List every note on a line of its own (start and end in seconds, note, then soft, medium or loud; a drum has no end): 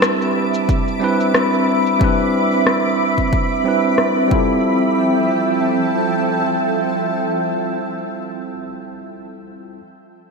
0.00 0.97 G3 medium
0.00 0.98 C4 medium
0.00 4.28 C4 medium
0.00 0.98 D4 medium
0.00 0.99 E4 medium
0.00 0.99 B4 medium
0.00 4.28 E5 medium
0.00 4.28 B5 medium
0.00 4.28 D6 medium
0.00 cross-stick loud
0.00 cabasa soft
0.21 cabasa soft
0.54 cabasa medium
0.69 kick loud
0.69 cabasa soft
0.88 cabasa soft
1.00 1.96 G3 medium
1.00 1.97 C4 medium
1.00 1.97 D4 medium
1.00 1.98 E4 medium
1.04 1.98 B4 medium
1.20 cabasa medium
1.34 cross-stick medium
1.34 cabasa soft
1.53 cabasa soft
1.86 cabasa medium
1.99 3.61 G3 medium
1.99 3.62 C4 medium
1.99 3.63 D4 medium
1.99 3.63 E4 medium
1.99 kick loud
1.99 cabasa medium
2.04 3.64 B4 medium
2.19 cabasa soft
2.53 cabasa medium
2.67 cross-stick medium
2.67 cabasa medium
2.85 cabasa soft
3.18 kick medium
3.18 cabasa medium
3.33 kick loud
3.33 cabasa soft
3.51 cabasa soft
3.64 4.27 G3 medium
3.64 4.29 C4 medium
3.64 4.32 D4 medium
3.64 4.30 E4 medium
3.68 4.33 B4 medium
3.84 cabasa medium
3.98 cross-stick medium
3.98 cabasa soft
4.17 cabasa soft
4.28 8.52 G3 medium
4.28 8.53 C4 medium
4.28 8.55 E4 medium
4.28 kick loud
4.32 8.05 F3 medium
4.32 8.05 C4 medium
4.32 8.56 F4 medium
4.32 8.05 A4 medium
4.32 8.58 A4 medium
4.32 8.05 E5 medium
4.32 8.05 G5 medium